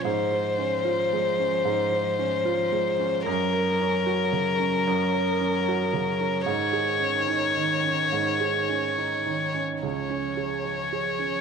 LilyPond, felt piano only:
\new Staff \with { instrumentName = "Felt piano" } { \time 3/4 \key des \major \tempo 4 = 112 aes,8 c''8 des'8 f'8 aes8 des'8 | aes,8 c''8 des'8 f'8 aes8 des'8 | ges,8 bes'8 des'8 ges'8 des8 des'8 | ges,8 bes'8 des'8 ges'8 des8 des'8 |
aes,8 aes'8 des'8 ees'8 ees8 des'8 | aes,8 aes'8 des'8 ees'8 ees8 des'8 | des,8 des'8 aes'8 des''8 aes'8 des'8 | }